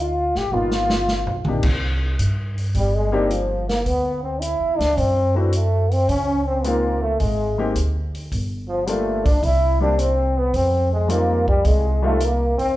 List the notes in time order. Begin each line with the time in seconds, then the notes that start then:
Already playing: D2
0.00 F4
0.35 G#1 G4, snare
0.52 G1 A#3 B3 D#4 F4
0.71 snare
0.90 snare
1.08 snare
1.26 B1, floor tom
1.44 A#1 C3 A#3 D4, mid tom
1.49 D#4 G4
1.63 C2, kick, crash
2.19 G2, closed hi-hat
2.58 open hi-hat
2.74 G1 G3, kick, open hi-hat
2.79 G3
2.94 G#3
3.12 G3 A#3 C4 D4 D#4 G4
3.30 F3, closed hi-hat
3.68 A#3, snare, open hi-hat
3.86 D2 B3, kick, open hi-hat
4.23 C4
4.41 E4, closed hi-hat
4.60 E2
4.78 C#2 D4, snare, open hi-hat
4.82 D4
4.97 F#2 C4, kick, open hi-hat
5.35 E3 A3 C4 D4 E4 F#4
5.52 A3, closed hi-hat
5.91 C4, open hi-hat
6.09 C#2 C#4, kick, open hi-hat
6.47 C4
6.64 G#3 A#3 C4 D#4 F4, closed hi-hat
7.01 A3
7.19 G#1 G#3, kick, open hi-hat
7.58 G#3 A#3 C4 D#4 G4
7.75 D2, closed hi-hat
8.15 open hi-hat
8.32 G1, kick, open hi-hat
8.68 F3
8.72 F3
8.87 G3 A3 A#3 D4 F4, closed hi-hat
9.24 D4, kick, open hi-hat
9.43 C2 E4, kick, open hi-hat
9.81 G3 A#3 C4 D4 G4
9.99 C4, closed hi-hat
10.38 B3
10.54 F2 C4, kick, open hi-hat
10.93 G#3
11.08 G3 G#3 A#3 C4 D#4 F4, closed hi-hat
11.48 G3, kick
11.64 C2 G#3, kick, open hi-hat
12.02 G3 G#3 A3 C4 D#4 F4
12.20 A#3, closed hi-hat
12.25 A#3
12.58 D#2 C4, open hi-hat